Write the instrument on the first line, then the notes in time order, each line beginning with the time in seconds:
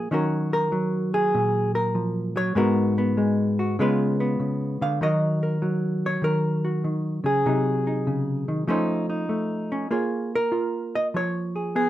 hollow-body jazz guitar
Already playing: A#3
0.11 D#3 F#3 C#4 F#4 A#4
0.53 A#4
0.72 F#3
1.14 G#4
1.34 A#2
1.75 A#4
1.95 F3
2.36 F#3 C#5
2.55 G#2 G#3 B3 F#4 A#4
2.98 B3
3.17 G#3
3.59 F#4
3.79 C#3 G#3 B3 F4 B4
4.20 B3
4.40 C#3
4.81 D3 F5
5.01 D#3 F#3 F#4 A#4 D#5
5.43 A#4
5.62 F#3
6.06 C#5
6.22 D#3 A#4
6.65 F#4
6.84 D#3
7.24 C#3 G#4
7.46 C3 F#3 D#4
7.87 D#4
8.07 C#3
8.48 D#3
8.67 F3 A3 C#4 D#4 C5
9.10 D#4
9.29 A3
9.72 C#4
9.91 A#3 F4 G#4 C#5
10.35 A#4
10.52 F4
10.95 D#5
11.14 F3 C#5
11.56 G#4
11.75 B3 G#4